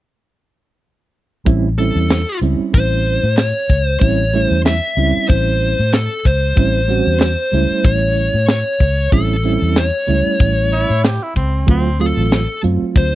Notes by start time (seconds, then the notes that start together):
1.45 A1 G3 C4 C#4 E4, kick, closed hi-hat
1.78 G3 C4 C#4 E4 A4, closed hi-hat
1.95 E2
2.10 snare, closed hi-hat
2.41 C#2 G3 C4 C#4 E4, closed hi-hat
2.60 muted fingered electric bass stroke
2.74 A1 C5, kick, closed hi-hat
3.06 closed hi-hat
3.23 A2
3.37 C#5, snare, closed hi-hat
3.69 C#2, kick, closed hi-hat
3.84 C5
4.00 A1 G3 C4 C#4 E4 C#5, kick, closed hi-hat
4.33 G3 A3 C#4 E4, closed hi-hat
4.43 C5
4.51 E2
4.65 E5, snare, closed hi-hat
4.97 C#2 G3 C4 C#4 E4, closed hi-hat
5.17 muted fingered electric bass stroke
5.29 A1 C5, kick, closed hi-hat
5.62 closed hi-hat
5.79 A2
5.93 A4, snare, closed hi-hat
6.25 C#2 C5, kick, closed hi-hat
6.56 A1 G3 C4 C#4 E4, kick, closed hi-hat
6.88 G3 C4 C#4 F#4, closed hi-hat
7.07 E2
7.20 C5, snare, closed hi-hat
7.52 C#2 G3 A3 C#4 E4, closed hi-hat
7.71 muted fingered electric bass stroke
7.84 A1 C#5, kick, closed hi-hat
8.17 closed hi-hat
8.34 A2
8.48 C#5, snare, closed hi-hat
8.80 C#2, kick, closed hi-hat
9.12 A1 G3 C4 C#4 E4 A4, kick, closed hi-hat
9.44 G3 C4 C#4 E4, closed hi-hat
9.62 E2
9.76 C#5, snare, closed hi-hat
10.07 C#2 G3 A3 C#4 E4, closed hi-hat
10.40 A1, kick, closed hi-hat
10.72 E4, closed hi-hat
10.90 A2
11.04 G4, snare, closed hi-hat
11.23 E4
11.36 C#2 C4, kick, closed hi-hat
11.67 D2 F#3 A3 C4 F4, kick, closed hi-hat
12.00 F#3 A3 C4 F4 A4, closed hi-hat
12.17 A1
12.32 snare, closed hi-hat
12.63 F#2 F#3 A3 C4 F4, closed hi-hat
12.82 muted fingered electric bass stroke
12.96 D2 C5, kick, closed hi-hat